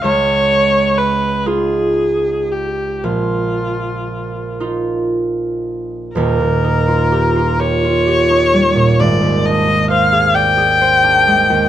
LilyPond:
<<
  \new Staff \with { instrumentName = "Viola" } { \time 6/8 \key ees \mixolydian \tempo 4. = 42 des''4 ces''8 aes'4 g'8 | f'4. r4. | bes'4. des''4. | d''8 ees''8 f''8 g''4. | }
  \new Staff \with { instrumentName = "Harp" } { \time 6/8 \key ees \mixolydian des,4. <ees' f'>4. | bes,,4. <ees' f'>4. | <ees,, ees,>16 bes,16 ees'16 f'16 g'16 f'16 g'16 f'16 g'16 ees'16 g16 bes,16 | aes,,16 ees,16 d'16 ees'16 c''16 aes'16 d''16 aes'16 c''16 d'16 aes16 ees,16 | }
>>